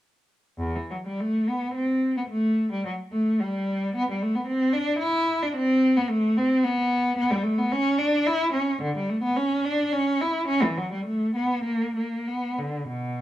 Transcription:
0.58 0.74 E2 medium
0.76 0.90 E3 medium
0.91 0.96 F#3 medium
1.06 1.19 G3 medium
1.20 1.47 A3 medium
1.48 1.75 B3 medium
1.74 2.15 C4 medium
2.17 2.22 B3 medium
2.29 2.70 A3 medium
2.72 2.85 G3 medium
2.85 2.93 F#3 medium
3.12 3.39 A3 medium
3.40 3.94 G3 medium
3.95 4.08 B3 loud
4.11 4.22 G3 medium
4.22 4.35 A3 loud
4.35 4.48 B3 medium
4.47 4.74 C4 loud
4.73 5.01 D4 loud
4.99 5.40 E4 loud
5.43 5.56 D4 medium
5.56 5.96 C4 loud
5.97 6.11 B3 medium
6.09 6.37 A3 loud
6.37 6.64 C4 loud
6.63 7.16 B3 loud
7.17 7.31 B3 loud
7.31 7.45 G3 medium
7.43 7.58 A3 medium
7.58 7.73 B3 medium
7.72 8.00 C#4 loud
7.98 8.27 D4 loud
8.27 8.54 E4 loud
8.53 8.81 C#4 medium
8.82 8.95 D3 loud
8.97 9.10 G3 medium
9.10 9.23 A3 medium
9.23 9.37 B3 medium
9.37 9.65 C#4 loud
9.65 9.93 D4 loud
9.93 10.21 C#4 loud
10.21 10.49 E4 medium
10.48 10.62 C#4 loud
10.63 10.77 E3 medium
10.78 10.92 F#3 medium
10.93 11.06 G3 medium
11.06 11.34 A3 medium
11.35 11.64 B3 medium
11.64 11.94 A#3 medium
11.96 12.26 A#3 medium
12.28 12.58 B3 medium
12.58 12.88 D3 medium
12.88 13.21 B2 medium

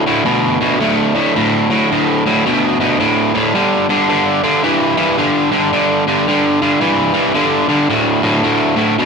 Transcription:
0.07 0.24 D2 medium
0.07 0.25 A2 medium
0.25 0.57 D2 medium
0.25 0.57 B2 medium
0.61 0.79 D2 medium
0.61 0.80 B2 medium
0.81 1.12 D2 medium
0.81 1.13 A2 loud
1.15 1.34 D2 medium
1.15 1.34 A2 medium
1.35 1.67 D2 medium
1.35 1.67 A2 medium
1.70 1.88 D2 medium
1.70 1.89 A2 medium
1.91 2.22 D2 medium
1.91 2.22 A2 medium
2.26 2.44 D2 medium
2.26 2.44 A2 medium
2.46 2.77 D2 medium
2.46 2.77 B2 medium
2.80 2.98 D2 medium
2.80 2.98 B2 medium
3.00 3.31 D2 medium
3.00 3.31 A2 medium
3.34 3.52 D2 medium
3.34 3.53 A2 medium
3.55 3.86 G2 medium
3.55 3.86 D3 medium
3.89 4.07 G2 medium
3.89 4.08 D3 medium
4.09 4.40 G2 medium
4.09 4.40 D3 medium
4.44 4.61 G2 medium
4.44 4.62 D3 medium
4.64 4.94 G2 medium
4.64 4.95 E3 medium
4.98 5.16 G2 medium
4.98 5.16 E3 medium
5.18 5.49 G2 medium
5.18 5.49 D3 medium
5.52 5.70 G2 medium
5.52 5.70 D3 medium
5.73 6.03 G2 medium
5.73 6.03 D3 medium
6.07 6.25 G2 medium
6.07 6.25 D3 medium
6.27 6.58 G2 medium
6.27 6.58 D3 medium
6.62 6.79 G2 medium
6.62 6.79 D3 medium
6.81 7.11 G2 medium
6.81 7.12 E3 medium
7.14 7.32 G2 medium
7.14 7.32 E3 medium
7.34 7.65 G2 medium
7.34 7.66 D3 medium
7.68 7.86 G2 medium
7.68 7.87 D3 medium
7.90 8.20 D2 medium
7.90 8.20 A2 medium
8.22 8.41 D2 medium
8.22 8.41 A2 medium
8.43 8.74 D2 medium
8.43 8.74 A2 medium
8.76 8.94 D2 medium
8.76 8.95 A2 medium
8.98 9.05 D2 medium
8.98 9.05 B2 medium

